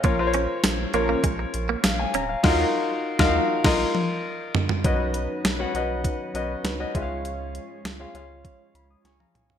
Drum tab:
CC |----------------|x-------x-------|----------------|----------------|
HH |x-x-x-x-x-x-x-x-|----------------|x-x-x-x-x-x-x-x-|x-x-x-x-x-x-x-x-|
TB |----x-------x---|----------------|----------------|----------------|
SD |----o-------o---|o----o--o-------|----o-------o---|----o-------o---|
T1 |----------------|----------o-----|----------------|-------------o--|
T2 |----------------|----------------|----------------|--------------o-|
FT |----------------|--------------oo|----------------|---------------o|
BD |o-------o-------|o----o--o-------|o-------o-----o-|--------o-------|